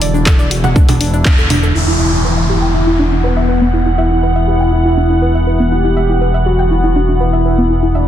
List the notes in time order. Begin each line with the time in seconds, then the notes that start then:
Already playing: E1 D3 A3 E4
0.01 D5, open hi-hat, shaker
0.14 D4, shaker
0.26 A4, kick, clap, shaker
0.39 D5, shaker
0.51 F#4, open hi-hat, shaker
0.64 F#5, low conga, shaker
0.76 D4, kick, shaker
0.89 D4, open hi-hat, low conga, shaker
1.01 D4, open hi-hat, shaker
1.13 D4, shaker
1.25 kick, clap, shaker
1.38 A4, shaker
1.50 D4, open hi-hat, low conga, shaker
1.63 A4, shaker
1.75 E1 E3 B3 E4 F#5, downlifter
1.88 E4
2.00 E5
2.13 E4
2.25 B4
2.37 E5
2.49 E4 G4
2.62 G5
2.74 E4
2.87 E4
2.99 D4
3.12 D4
3.24 B3 B4
3.36 E5
3.49 B4
3.61 B3
3.73 E4
3.86 E4
3.98 E4 E5
4.11 E4
4.23 B4
4.36 E5
4.48 G4
4.60 G5
4.72 E4
4.85 E4
4.97 D4
5.10 D4
5.22 B4
5.35 E5
5.47 B4
5.60 B3
5.72 E4 G4
5.84 E4
5.96 E5
6.09 E4
6.21 B4
6.34 E5
6.46 F#4 G4
6.59 G5
6.71 E4
6.84 E4
6.96 D4
7.08 D4
7.20 E4 B4
7.33 E5
7.45 B4
7.58 B3
7.70 E4
7.83 E4
7.95 D4 E5